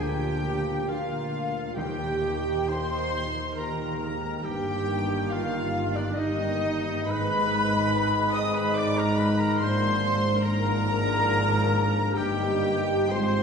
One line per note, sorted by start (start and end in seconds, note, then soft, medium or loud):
0.00 1.78 D2 medium
0.00 0.87 A#2 medium
0.00 1.78 D3 medium
0.00 1.81 D3 medium
0.00 0.89 F3 medium
0.00 1.81 G#3 medium
0.00 0.86 A#3 medium
0.00 1.53 A#3 medium
0.00 0.22 F4 medium
0.00 0.90 G4 loud
0.00 0.88 G4 medium
0.00 0.86 A#4 medium
0.00 0.65 A#4 medium
0.00 0.90 G5 medium
0.00 0.90 G5 loud
0.23 1.31 F4 medium
0.44 0.87 F5 medium
0.67 1.08 A#4 medium
0.88 1.76 A#2 medium
0.88 1.76 F3 medium
0.88 1.75 A#3 medium
0.88 1.75 F4 medium
0.88 1.78 F4 medium
0.88 1.74 A#4 medium
0.88 1.80 F5 medium
0.88 1.79 F5 medium
0.88 1.78 F5 medium
1.10 2.45 A#4 medium
1.54 1.98 A#3 medium
1.75 4.41 D#2 medium
1.75 3.39 A#2 medium
1.75 4.48 D#3 medium
1.75 3.11 D#3 loud
1.75 3.39 D#3 medium
1.75 4.41 D#3 medium
1.75 3.40 A#3 medium
1.75 3.40 G4 medium
1.75 2.70 G4 loud
1.75 2.69 G4 loud
1.75 2.68 G5 loud
1.75 2.70 G5 medium
1.75 2.69 G5 loud
1.99 4.22 A#3 medium
2.22 2.68 D#4 medium
2.69 4.01 D#4 medium
2.69 3.30 C5 loud
2.69 3.58 C5 loud
2.69 3.30 C6 loud
2.69 3.58 C6 loud
2.69 3.59 C6 loud
2.92 3.35 D#5 medium
3.13 3.57 A#5 medium
3.37 5.72 D#5 medium
3.56 4.00 A#2 medium
3.56 4.42 D#3 medium
3.56 4.43 A#3 medium
3.56 4.43 G4 medium
3.56 4.45 A#4 medium
3.56 4.47 A#4 medium
3.56 4.46 A#5 medium
3.56 4.45 A#5 medium
3.56 7.11 A#5 medium
3.56 4.46 A#5 medium
3.80 5.29 A#4 medium
3.98 4.44 G#2 medium
3.98 5.08 D#4 medium
4.23 4.87 A#3 medium
4.43 7.03 G1 medium
4.43 6.15 G2 medium
4.43 7.10 G2 medium
4.43 7.03 G2 medium
4.43 6.12 D#3 medium
4.43 6.13 A#3 medium
4.43 6.13 G4 medium
4.43 5.31 G4 loud
4.43 5.34 G4 loud
4.43 5.31 G5 medium
4.43 5.32 G5 medium
4.43 5.31 G5 loud
4.66 7.11 G3 medium
4.88 6.84 A#3 medium
5.09 5.50 D#4 medium
5.30 5.98 F4 loud
5.30 5.95 F4 loud
5.30 5.94 A#4 medium
5.30 5.93 F5 medium
5.30 5.96 F5 loud
5.30 5.95 F5 loud
5.52 6.59 D#4 medium
5.74 6.14 D#5 medium
5.93 6.17 D4 medium
5.93 6.20 D4 medium
5.93 6.37 A#4 medium
5.93 6.16 D5 medium
5.93 6.16 D5 loud
6.14 7.05 G2 medium
6.14 7.05 D#3 medium
6.14 7.05 A#3 medium
6.14 7.07 D#4 medium
6.14 7.05 G4 loud
6.14 7.05 D#5 medium
6.14 7.07 D#5 loud
6.14 7.91 D#5 medium
6.14 7.07 D#5 loud
6.19 7.12 D#4 loud
6.38 7.11 A#4 medium
6.85 7.11 A#3 medium
7.05 9.56 G#1 medium
7.05 9.59 G#2 medium
7.05 9.56 G#2 loud
7.05 9.56 D#3 loud
7.05 9.55 G#3 loud
7.05 9.55 D#4 medium
7.05 8.31 B4 loud
7.05 8.36 B5 loud
7.05 8.31 B5 loud
7.05 8.34 B5 loud
7.11 8.34 B4 loud
7.50 9.17 G#3 medium
7.73 8.95 D#4 medium
7.92 8.33 D#5 medium
8.14 8.55 G#4 medium
8.33 8.54 D#5 loud
8.33 8.76 D#5 medium
8.33 8.54 D#5 loud
8.33 8.55 D#6 loud
8.33 8.54 D#6 loud
8.33 8.55 D#6 loud
8.53 12.20 G#4 medium
8.53 8.75 B4 loud
8.53 8.80 B4 loud
8.53 8.74 B5 loud
8.53 8.77 B5 loud
8.57 8.76 B5 loud
8.75 8.97 D5 loud
8.75 9.00 D5 loud
8.75 9.63 D#5 medium
8.75 8.98 D6 loud
8.75 8.97 D6 loud
8.75 8.98 D6 loud
8.97 9.63 D#4 medium
8.97 9.18 A#4 loud
8.97 9.22 A#4 loud
8.97 9.17 A#5 loud
8.97 9.18 A#5 loud
9.17 9.81 G#3 medium
9.17 9.38 B4 loud
9.17 9.40 B4 loud
9.17 9.38 B5 loud
9.17 9.41 B5 loud
9.17 9.39 B5 loud
9.39 9.63 D#3 medium
9.39 9.60 A#4 medium
9.39 9.65 A#4 loud
9.39 9.60 A#5 loud
9.59 12.12 G#1 loud
9.59 10.27 G#2 loud
9.59 12.20 G#2 loud
9.59 12.13 G#2 loud
9.59 10.27 F3 medium
9.59 10.42 A#3 medium
9.59 10.42 D4 loud
9.59 10.43 C5 loud
9.59 10.42 C6 loud
9.59 10.16 C6 loud
9.63 10.19 C5 loud
9.82 12.20 G#3 medium
10.03 11.94 A#3 medium
10.24 10.65 D4 medium
10.43 12.13 G#2 loud
10.43 12.13 F3 loud
10.43 11.98 A#3 loud
10.43 11.98 D4 loud
10.43 12.16 A#4 loud
10.43 12.19 A#4 loud
10.43 11.08 A#4 medium
10.43 12.16 A#5 loud
10.43 12.13 A#5 loud
10.43 12.12 A#5 loud
10.67 11.72 D4 medium
10.88 11.29 D5 medium
11.09 11.51 A#4 medium
11.31 12.20 D5 medium
11.52 13.16 A#4 medium
11.73 12.20 D4 medium
11.95 12.62 A#3 medium
12.15 13.09 G1 medium
12.15 13.10 G2 loud
12.15 13.16 G2 loud
12.15 13.10 G3 loud
12.15 13.09 A#3 medium
12.15 13.09 D#4 medium
12.15 13.09 G4 loud
12.15 13.11 G4 loud
12.15 13.13 G5 loud
12.15 13.09 G5 loud
12.15 13.10 G5 loud
12.40 13.15 G3 medium
12.63 13.15 A#3 medium
12.87 13.15 D#4 medium
13.10 13.43 G#1 loud
13.10 13.43 G#2 medium
13.10 13.43 G#2 loud
13.10 13.43 G#2 medium
13.10 13.43 F3 medium
13.10 13.43 C4 medium
13.10 13.43 F4 medium
13.10 13.43 C5 loud
13.10 13.43 C6 loud
13.34 13.43 G#3 medium